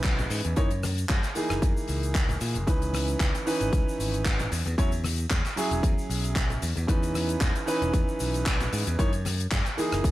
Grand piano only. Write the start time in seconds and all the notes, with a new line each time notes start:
Already playing: E3 C#4 D#4 B4
0.56 E3 A#3 D#4 C#5
1.35 E3 A#3 D#4 G#4
2.67 E3 C#4 D#4 B4
3.46 E3 C#4 D#4 B4
4.78 F#3 C#4 E4 C#5
5.56 F#3 C#4 E4 G#4
6.87 E3 C#4 D#4 B4
7.66 E3 C#4 D#4 B4
8.98 E3 A#3 D#4 C#5
9.77 E3 A#3 D#4 G#4